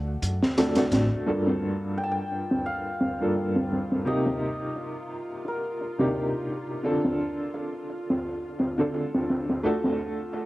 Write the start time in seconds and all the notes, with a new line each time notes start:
Already playing: D2 A3 D4 F#4 A4 F#5
0.22 F#2, closed hi-hat
0.43 snare
0.58 A3 D4 F#4 A4, snare, closed hi-hat
0.75 A3 D4 F#4 A4, snare, closed hi-hat
0.92 A1, snare, closed hi-hat
1.26 G2 A#3 D4 F4 A4, closed hi-hat
1.47 snare
1.63 closed hi-hat
1.97 G5, closed hi-hat
2.04 A5
2.12 G5
2.16 closed hi-hat
2.31 closed hi-hat
2.51 snare
2.66 F5, open hi-hat
3.01 snare, closed hi-hat
3.20 G2 A#3 D4 F4 A4
3.36 closed hi-hat
3.56 snare
3.72 snare, closed hi-hat
3.92 snare
4.05 C3 A#3 C4 D#4 G4 D#5, closed hi-hat
4.26 snare
4.41 closed hi-hat
4.75 closed hi-hat
5.45 A#4, closed hi-hat
5.81 closed hi-hat
5.98 C3 A#3 D4 D#4 G4, snare
6.14 closed hi-hat
6.34 closed hi-hat
6.50 closed hi-hat
6.83 D3 C4 D4 F4 A4, closed hi-hat
7.04 snare
7.18 closed hi-hat
7.54 closed hi-hat
7.73 closed hi-hat
7.89 closed hi-hat
8.10 snare
8.25 open hi-hat
8.59 snare, closed hi-hat
8.78 D3 C4 D4 F4 A4
8.94 closed hi-hat
9.14 snare
9.29 snare, closed hi-hat
9.50 snare
9.63 A3 D4 F#4 A4, closed hi-hat
9.84 snare
9.99 closed hi-hat
10.33 closed hi-hat